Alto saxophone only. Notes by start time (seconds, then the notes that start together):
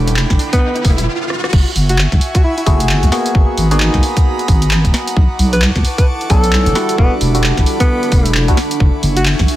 0.53 B3
1.89 F#4
2.35 F#4
2.44 E4
2.57 E4
3.71 D#4
5.53 B4
5.98 B4
6.30 A4
6.98 B3
7.80 B3
9.16 F#4